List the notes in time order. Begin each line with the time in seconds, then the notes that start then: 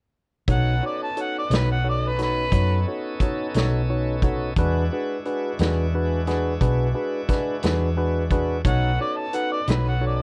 0.48 B1 B3 C#4 D#4 F#4 A4 C#5 F#5, kick, closed hi-hat
0.83 D#4 F#4 A4 C#5 D5
1.03 A5
1.17 D#4 F#4 A4 C#5, closed hi-hat
1.21 F#5
1.38 D5
1.50 B1 D#4 F#4 A4 C#5, snare, closed hi-hat
1.56 B4
1.72 F#5
1.84 D#4 F#4 A4 C#5
1.90 D5
2.08 B4
2.19 D#4 F#4 A4 C#5, snare, closed hi-hat
2.23 B4
2.52 F#2 D#4 F#4 A4 C#5, kick, closed hi-hat
2.88 D#4 F#4 A4 C#5
3.20 D#4 F#4 A4 C#5, kick, closed hi-hat
3.54 B1 D#4 F#4 A4 C#5, snare, closed hi-hat
3.90 D#4 F#4 A4 C#5
4.22 D#4 F#4 A4 C#5, kick, closed hi-hat
4.56 E2 G#3 D4 E4 F#4 G#4 B4, kick, closed hi-hat
4.93 D4 F#4 G#4 B4
5.25 D4 F#4 G#4 B4, closed hi-hat
5.59 E2 D4 F#4 G#4 B4, snare, closed hi-hat
5.94 D4 F#4 G#4 B4
6.27 D4 F#4 G#4 B4, snare, closed hi-hat
6.61 B1 D4 F#4 G#4 B4, kick, closed hi-hat
6.94 D4 F#4 G#4 B4
7.29 D4 F#4 G#4 B4, kick, snare, closed hi-hat
7.63 E2 D4 F#4 G#4 B4, snare, closed hi-hat
7.97 D4 F#4 G#4 B4
8.31 D4 F#4 G#4 B4, kick, closed hi-hat
8.65 B1 B3 C#4 D#4 F#4 A4 C#5 F#5, kick, closed hi-hat
9.00 D#4 F#4 A4 C#5 D5
9.17 A5
9.33 D#4 F#4 A4 B4 F#5, closed hi-hat
9.52 D5
9.67 B1 D#4 F#4 A4 B4 C#5, snare, closed hi-hat
9.88 F#5
10.01 D#4 F#4 A4 C#5
10.07 D5